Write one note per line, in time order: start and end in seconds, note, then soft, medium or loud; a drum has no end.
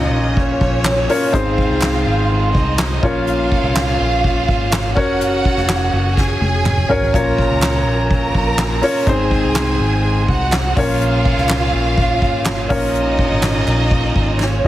0.00 0.13 C#2 medium
0.00 1.35 A#2 medium
0.00 0.15 C#4 medium
0.00 0.35 D#4 medium
0.00 0.15 F4 medium
0.00 0.15 A#4 medium
0.00 0.15 C#5 medium
0.00 0.35 D#5 medium
0.13 0.58 A#1 medium
0.13 ride medium
0.24 ride soft
0.37 1.32 C#4 medium
0.37 1.32 C#5 loud
0.37 kick medium
0.37 ride medium
0.49 ride soft
0.61 1.06 A#1 medium
0.61 kick medium
0.61 ride medium
0.72 ride soft
0.85 snare loud
0.85 clap medium
0.85 clap loud
0.85 ride medium
1.08 1.28 C#4 medium
1.08 1.28 F4 medium
1.08 1.28 A#4 medium
1.08 1.29 C#5 medium
1.08 open hi-hat medium
1.08 ride medium
1.22 ride soft
1.32 1.67 G#1 loud
1.32 2.02 G#2 medium
1.32 2.08 C4 medium
1.32 2.08 D#4 medium
1.32 2.53 F4 medium
1.32 2.09 G#4 medium
1.32 2.09 C5 medium
1.32 2.52 F5 medium
1.32 kick loud
1.32 hi-hat pedal medium
1.58 kick medium
1.58 ride medium
1.70 2.04 C2 medium
1.70 ride soft
1.81 snare loud
1.81 clap loud
1.81 ride medium
1.83 clap medium
1.94 ride soft
2.06 2.51 G#1 medium
2.06 ride medium
2.18 ride soft
2.31 ride medium
2.43 ride soft
2.54 3.00 C2 medium
2.54 3.02 D#4 medium
2.54 3.02 D#5 medium
2.54 kick medium
2.54 ride medium
2.67 ride soft
2.79 snare loud
2.79 clap medium
2.79 clap loud
2.79 ride medium
3.02 3.59 A#1 loud
3.02 3.72 A#2 medium
3.02 3.80 C#4 medium
3.02 4.92 F4 medium
3.02 3.80 F4 medium
3.02 3.81 A#4 medium
3.02 3.81 C#5 medium
3.02 4.92 F5 loud
3.02 kick loud
3.02 crash medium
3.15 ride soft
3.27 hi-hat pedal medium
3.27 ride medium
3.39 ride soft
3.51 kick medium
3.51 ride medium
3.63 3.97 C2 medium
3.63 ride soft
3.76 snare loud
3.76 clap medium
3.76 ride medium
4.00 4.45 A#1 medium
4.00 ride medium
4.12 ride soft
4.24 kick medium
4.24 ride medium
4.48 4.97 G#1 medium
4.48 kick medium
4.48 ride medium
4.60 ride soft
4.72 snare loud
4.72 clap medium
4.72 clap loud
4.72 ride medium
4.95 5.42 F#1 loud
4.95 5.73 C#4 medium
4.95 5.74 F#4 medium
4.95 6.15 F#4 medium
4.95 5.74 A#4 medium
4.95 5.74 C#5 loud
4.95 6.15 F#5 loud
4.95 kick loud
4.95 crash medium
5.09 ride soft
5.21 hi-hat pedal medium
5.21 ride medium
5.45 kick medium
5.45 ride medium
5.57 5.91 F1 medium
5.57 snare soft
5.57 ride soft
5.69 snare loud
5.69 clap medium
5.69 ride medium
5.81 ride soft
5.93 6.38 F#1 loud
5.93 ride medium
6.04 ride soft
6.17 7.12 G#4 medium
6.17 7.12 G#5 medium
6.17 kick medium
6.17 snare medium
6.41 6.86 F1 medium
6.41 high tom medium
6.65 clap medium
6.65 mid tom medium
6.77 mid tom medium
6.89 7.12 G#1 medium
6.89 7.08 C#4 medium
6.89 7.08 F#4 medium
6.89 7.09 A#4 medium
6.89 7.09 C#5 medium
6.89 floor tom loud
7.02 floor tom loud
7.13 7.48 A#1 loud
7.13 7.83 A#2 medium
7.13 7.89 C#4 medium
7.13 7.89 F4 medium
7.13 7.89 A#4 medium
7.13 8.09 A#4 medium
7.13 7.90 C#5 loud
7.13 8.09 A#5 medium
7.13 kick loud
7.13 hi-hat pedal medium
7.13 ride medium
7.38 kick loud
7.38 ride medium
7.50 7.86 C#2 medium
7.50 ride soft
7.62 snare loud
7.62 clap medium
7.62 clap loud
7.74 ride soft
7.86 8.31 A#1 loud
7.86 ride medium
7.98 ride soft
8.10 9.05 A#4 medium
8.10 9.05 A#5 medium
8.10 kick loud
8.10 ride medium
8.23 ride soft
8.35 8.80 A#1 medium
8.35 kick medium
8.35 ride medium
8.46 ride soft
8.58 snare loud
8.58 clap medium
8.58 clap loud
8.58 ride medium
8.82 9.01 C#4 medium
8.82 9.02 F4 medium
8.82 9.02 A#4 medium
8.82 9.02 C#5 medium
8.82 open hi-hat medium
8.82 ride medium
8.95 ride soft
9.06 9.41 G#1 loud
9.06 9.76 G#2 medium
9.06 9.82 C4 medium
9.06 9.83 D#4 medium
9.06 10.26 G#4 medium
9.06 9.83 G#4 medium
9.06 9.83 C5 loud
9.06 10.26 G#5 medium
9.06 kick loud
9.06 hi-hat pedal medium
9.06 ride medium
9.19 ride soft
9.30 kick medium
9.30 ride medium
9.43 9.78 C2 medium
9.43 ride soft
9.55 snare loud
9.55 clap medium
9.67 ride soft
9.79 10.25 G#1 loud
9.79 ride medium
9.91 ride soft
10.04 ride medium
10.16 ride soft
10.28 10.74 C2 medium
10.28 10.77 F#4 medium
10.28 10.76 F#5 medium
10.28 kick medium
10.28 ride medium
10.40 ride soft
10.52 snare loud
10.52 clap medium
10.52 clap loud
10.52 ride medium
10.76 11.33 A#1 loud
10.76 11.46 A#2 medium
10.76 11.54 C#4 medium
10.76 12.66 F4 loud
10.76 11.55 F4 medium
10.76 11.55 A#4 medium
10.76 11.55 C#5 medium
10.76 12.67 F5 loud
10.76 kick loud
10.76 open hi-hat medium
10.76 ride medium
10.89 ride medium
11.01 hi-hat pedal medium
11.01 ride loud
11.14 ride soft
11.25 kick medium
11.25 ride medium
11.37 11.71 C2 medium
11.37 snare soft
11.37 ride soft
11.49 snare loud
11.49 clap medium
11.49 ride medium
11.50 clap loud
11.73 12.22 A#1 loud
11.73 ride medium
11.85 ride soft
11.97 kick loud
11.97 ride medium
12.22 12.67 G#1 medium
12.22 kick medium
12.22 ride medium
12.33 ride soft
12.45 snare loud
12.45 clap medium
12.45 clap loud
12.45 ride medium
12.58 ride soft
12.69 13.15 A#1 loud
12.69 13.39 A#2 medium
12.69 13.47 C#4 medium
12.69 14.37 D#4 loud
12.69 13.48 F4 medium
12.69 13.48 A#4 medium
12.69 13.48 C#5 medium
12.69 14.37 D#5 loud
12.69 kick loud
12.69 open hi-hat medium
12.69 ride medium
12.82 ride soft
12.94 hi-hat pedal medium
12.94 ride medium
13.07 ride soft
13.18 kick loud
13.18 ride medium
13.30 13.65 G#1 medium
13.30 ride soft
13.42 snare loud
13.42 clap loud
13.42 ride medium
13.54 ride soft
13.67 14.12 A#1 loud
13.67 clap medium
13.67 ride medium
13.79 ride soft
13.91 kick loud
13.91 ride medium
14.16 14.61 G#1 medium
14.16 kick medium
14.16 ride medium
14.27 ride soft
14.39 14.68 C#4 medium
14.39 14.68 C#5 medium
14.39 snare medium
14.39 clap medium
14.64 14.68 G#1 loud
14.64 14.68 C#4 medium
14.64 14.68 F4 medium
14.64 mid tom loud